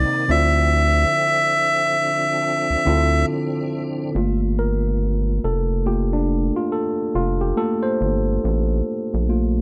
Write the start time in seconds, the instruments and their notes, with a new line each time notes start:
Already playing: tine electric piano C3 C4 D#4 A#4 D5, tonewheel organ D#3 A#3 C4 D#4, melodica D5
0.28 analog synth bass D2, tine electric piano D3 C4 E4 F4 D5, tonewheel organ D3 F3 E5, melodica E5
2.01 tonewheel organ D4
2.70 analog synth bass D2
2.85 analog synth bass D2, tine electric piano D3 C4 E4 F4 A4
4.15 analog synth bass G1, tine electric piano A3 A#3 F4
4.59 tine electric piano A#4
5.44 analog synth bass F1, tine electric piano A4
5.86 tine electric piano A3 A#3 F4 G4
6.13 tine electric piano D4
6.56 tine electric piano F4
6.72 tine electric piano A4
7.15 analog synth bass F1, tine electric piano F4
7.41 tine electric piano G4
7.57 tine electric piano A3 A#3 F4 A4
7.83 tine electric piano C5
8.01 analog synth bass G1
8.44 analog synth bass A1
9.14 analog synth bass A#1
9.29 tine electric piano A3 A#3 F4